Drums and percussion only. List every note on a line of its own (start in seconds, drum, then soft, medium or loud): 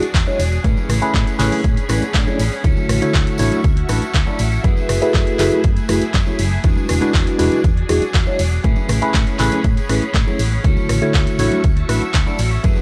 0.03 closed hi-hat medium
0.03 tambourine soft
0.14 kick loud
0.14 clap loud
0.14 closed hi-hat medium
0.14 tambourine medium
0.27 tambourine soft
0.27 high conga medium
0.39 open hi-hat loud
0.39 tambourine loud
0.52 tambourine soft
0.64 kick loud
0.64 closed hi-hat medium
0.64 tambourine medium
0.77 tambourine soft
0.77 high conga medium
0.89 cross-stick medium
0.89 open hi-hat loud
0.89 tambourine medium
0.89 low conga medium
1.02 closed hi-hat medium
1.02 tambourine soft
1.14 kick loud
1.14 clap loud
1.14 tambourine medium
1.14 high conga medium
1.27 closed hi-hat medium
1.27 tambourine soft
1.39 clap medium
1.39 open hi-hat loud
1.39 tambourine medium
1.39 low conga medium
1.52 open hi-hat medium
1.52 tambourine soft
1.52 high conga medium
1.64 kick loud
1.64 closed hi-hat medium
1.64 tambourine soft
1.77 closed hi-hat medium
1.77 tambourine soft
1.89 cross-stick medium
1.89 open hi-hat loud
1.89 tambourine loud
1.89 high conga medium
2.02 closed hi-hat medium
2.02 tambourine soft
2.14 kick loud
2.14 clap loud
2.14 closed hi-hat medium
2.14 tambourine medium
2.27 tambourine soft
2.27 high conga medium
2.39 open hi-hat loud
2.39 tambourine loud
2.52 tambourine soft
2.64 kick loud
2.64 closed hi-hat medium
2.64 tambourine medium
2.77 tambourine soft
2.77 high conga medium
2.89 cross-stick medium
2.89 open hi-hat loud
2.89 tambourine loud
2.89 low conga medium
3.02 closed hi-hat medium
3.02 tambourine soft
3.13 kick loud
3.13 clap loud
3.13 tambourine medium
3.13 high conga medium
3.27 closed hi-hat medium
3.27 tambourine soft
3.38 open hi-hat loud
3.38 tambourine medium
3.38 low conga medium
3.51 closed hi-hat medium
3.51 tambourine soft
3.51 high conga medium
3.64 kick loud
3.64 closed hi-hat medium
3.64 tambourine medium
3.77 closed hi-hat medium
3.89 cross-stick medium
3.89 open hi-hat loud
3.89 tambourine loud
3.89 high conga medium
4.02 closed hi-hat medium
4.02 tambourine soft
4.14 kick loud
4.14 clap loud
4.14 closed hi-hat medium
4.14 tambourine medium
4.27 tambourine soft
4.27 high conga medium
4.39 open hi-hat loud
4.39 tambourine loud
4.52 tambourine soft
4.64 kick loud
4.64 closed hi-hat medium
4.64 tambourine medium
4.77 tambourine soft
4.77 high conga medium
4.89 cross-stick medium
4.89 open hi-hat loud
4.89 tambourine loud
4.89 low conga medium
5.02 closed hi-hat medium
5.02 tambourine soft
5.14 kick loud
5.14 clap loud
5.14 tambourine medium
5.14 high conga medium
5.27 closed hi-hat medium
5.27 tambourine soft
5.39 clap medium
5.39 open hi-hat loud
5.39 tambourine loud
5.39 low conga medium
5.51 closed hi-hat medium
5.51 tambourine soft
5.51 high conga medium
5.63 kick loud
5.63 closed hi-hat medium
5.63 tambourine soft
5.77 closed hi-hat medium
5.77 tambourine soft
5.89 cross-stick medium
5.89 open hi-hat loud
5.89 tambourine loud
5.89 high conga medium
6.02 closed hi-hat medium
6.02 tambourine soft
6.14 kick loud
6.14 clap loud
6.14 closed hi-hat medium
6.14 tambourine medium
6.26 tambourine soft
6.26 high conga medium
6.39 open hi-hat loud
6.39 tambourine medium
6.53 tambourine soft
6.64 kick loud
6.64 closed hi-hat medium
6.64 tambourine medium
6.76 tambourine soft
6.76 high conga medium
6.89 cross-stick medium
6.89 open hi-hat loud
6.89 tambourine loud
6.89 low conga medium
7.02 closed hi-hat medium
7.02 tambourine soft
7.14 kick loud
7.14 clap loud
7.14 tambourine soft
7.14 high conga medium
7.27 closed hi-hat medium
7.27 tambourine soft
7.39 open hi-hat loud
7.39 tambourine medium
7.39 low conga loud
7.51 closed hi-hat medium
7.51 tambourine soft
7.51 high conga medium
7.64 kick loud
7.64 closed hi-hat medium
7.64 tambourine medium
7.77 closed hi-hat medium
7.89 cross-stick medium
7.89 open hi-hat loud
7.89 tambourine loud
7.89 high conga medium
8.02 closed hi-hat medium
8.02 tambourine soft
8.14 kick loud
8.14 clap loud
8.14 closed hi-hat medium
8.14 tambourine soft
8.26 tambourine soft
8.26 high conga loud
8.39 open hi-hat loud
8.39 tambourine medium
8.52 tambourine soft
8.64 kick loud
8.64 closed hi-hat medium
8.64 tambourine soft
8.76 tambourine soft
8.76 high conga loud
8.89 cross-stick medium
8.89 open hi-hat loud
8.89 tambourine medium
8.89 low conga medium
9.02 closed hi-hat soft
9.02 tambourine soft
9.14 kick loud
9.14 clap loud
9.14 tambourine medium
9.14 high conga medium
9.27 closed hi-hat medium
9.27 tambourine soft
9.39 clap medium
9.39 open hi-hat loud
9.39 tambourine medium
9.39 low conga medium
9.52 closed hi-hat medium
9.52 tambourine soft
9.52 high conga medium
9.64 kick loud
9.64 closed hi-hat medium
9.64 tambourine soft
9.77 closed hi-hat soft
9.77 tambourine soft
9.89 cross-stick medium
9.89 open hi-hat loud
9.89 tambourine medium
9.89 high conga medium
10.02 closed hi-hat soft
10.02 tambourine soft
10.14 kick loud
10.14 clap loud
10.14 closed hi-hat medium
10.14 tambourine medium
10.28 tambourine soft
10.28 high conga loud
10.39 open hi-hat loud
10.39 tambourine medium
10.52 tambourine soft
10.64 kick loud
10.64 closed hi-hat medium
10.64 tambourine soft
10.77 tambourine soft
10.77 high conga medium
10.89 cross-stick medium
10.89 open hi-hat loud
10.89 tambourine medium
10.89 low conga medium
11.02 closed hi-hat soft
11.02 tambourine soft
11.14 kick loud
11.14 clap loud
11.14 tambourine medium
11.14 high conga medium
11.27 closed hi-hat medium
11.27 tambourine soft
11.39 open hi-hat loud
11.39 tambourine medium
11.39 low conga medium
11.52 closed hi-hat medium
11.52 tambourine soft
11.52 high conga loud
11.64 kick loud
11.64 closed hi-hat medium
11.64 tambourine soft
11.77 closed hi-hat soft
11.89 cross-stick medium
11.89 open hi-hat loud
11.89 tambourine medium
11.89 high conga medium
12.02 closed hi-hat soft
12.02 tambourine soft
12.14 kick loud
12.14 clap loud
12.14 closed hi-hat medium
12.14 tambourine soft
12.27 tambourine soft
12.27 high conga medium
12.38 open hi-hat loud
12.38 tambourine medium
12.51 tambourine soft
12.64 kick loud
12.64 closed hi-hat medium
12.64 tambourine medium
12.76 tambourine soft
12.76 high conga medium